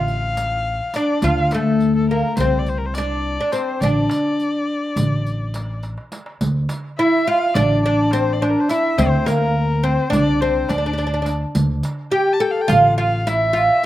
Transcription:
Already playing: upright bass A1, oud F4, kamancheh F5
0.08 riq, darbuka ka
0.37 riq, darbuka tek
0.66 darbuka ka
0.94 oud D4, kamancheh D5, riq, darbuka tek
1.22 upright bass D2, oud F4, kamancheh F5, riq, darbuka dum
1.51 oud A3, kamancheh A4, riq, darbuka tek
1.80 riq
1.95 kamancheh A4
2.09 oud A#3, kamancheh A#4
2.37 upright bass C2, oud C4, kamancheh C5, riq, darbuka dum
2.59 kamancheh D5
2.66 kamancheh C5, riq, darbuka ka
2.78 kamancheh A#4
2.86 kamancheh C5
2.94 oud D4, kamancheh D5, riq, darbuka tek
3.40 oud D4
3.52 oud C4, kamancheh C5, riq, darbuka tek
3.81 upright bass A1, oud D4, kamancheh D5, riq, darbuka dum
4.09 riq, darbuka tek
4.40 riq
4.96 upright bass A1, riq, darbuka dum
5.26 riq, darbuka ka
5.54 riq, darbuka tek
5.83 riq, darbuka tek
5.98 darbuka ka
6.12 riq, darbuka tek
6.26 darbuka ka
6.41 upright bass D2, riq, darbuka dum
6.69 riq, darbuka tek
6.98 oud E4, kamancheh E5, darbuka ka
7.27 oud F4, kamancheh F5
7.55 upright bass A1, oud D4, kamancheh D5, riq, darbuka dum
7.83 oud D4, kamancheh D5
8.11 oud C4, kamancheh C5, riq, darbuka tek
8.33 kamancheh D5
8.42 oud D4, kamancheh C5
8.50 kamancheh A#4
8.60 kamancheh C5
8.69 oud E4, kamancheh E5, riq, darbuka tek
8.98 upright bass D2, oud C4, kamancheh C5, riq, darbuka dum
9.26 oud A#3, kamancheh A#4, riq, darbuka tek
9.55 darbuka ka
9.83 oud C4, kamancheh C5
10.10 upright bass C2, oud D4, kamancheh D5, riq, darbuka dum
10.41 oud C4, kamancheh C5, darbuka ka
10.69 upright bass D2, oud D4, kamancheh D5, riq, darbuka tek
10.78 oud D4
10.86 oud D4
10.93 oud D4
10.98 oud D4, riq
11.07 oud D4
11.14 oud D4
11.22 oud D4, darbuka tek
11.26 riq
11.55 upright bass D2, riq, darbuka dum
11.83 riq, darbuka tek
12.12 oud G4, kamancheh G5
12.33 kamancheh A5
12.40 oud A4, kamancheh G5
12.51 kamancheh F5
12.61 kamancheh G5
12.68 upright bass A1, oud F4, kamancheh F5, riq, darbuka dum
12.98 oud F4, kamancheh F5
13.27 oud E4, kamancheh E5, riq, darbuka tek
13.53 oud F4, riq

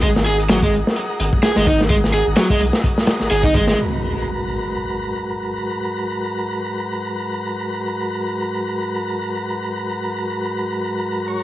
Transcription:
Already playing: sub bass G#1, tonewheel organ G#3 F#4 A#4 D#5
0.02 overdriven electric guitar G#3, kick, closed hi-hat
0.16 snare
0.26 overdriven electric guitar G#4, closed hi-hat
0.40 closed hi-hat
0.49 overdriven electric guitar F#3, snare, closed hi-hat
0.63 overdriven electric guitar G#3, kick
0.74 closed hi-hat
0.87 snare
0.96 closed hi-hat
1.20 sub bass G#1, closed hi-hat
1.33 kick
1.43 overdriven electric guitar G#4, snare, closed hi-hat
1.56 sub bass G#1, overdriven electric guitar G#3, snare
1.66 overdriven electric guitar D#4, kick, closed hi-hat
1.81 snare
1.90 overdriven electric guitar G#3, kick, closed hi-hat
2.04 snare
2.13 overdriven electric guitar G#4, closed hi-hat
2.27 sub bass G#1
2.36 overdriven electric guitar F#3, snare, closed hi-hat
2.50 overdriven electric guitar G#3, kick
2.60 sub bass B1, closed hi-hat
2.73 snare
2.84 kick, closed hi-hat
2.98 snare
3.07 snare, closed hi-hat
3.20 sub bass G#1, snare
3.31 sub bass G#1, overdriven electric guitar G#4, closed hi-hat
3.44 overdriven electric guitar D#4, kick
3.55 overdriven electric guitar G#3, kick, closed hi-hat
3.68 overdriven electric guitar G#3, snare
3.77 tonewheel organ G#2 F#3 A#4 B4, impact
11.28 tonewheel organ C#5

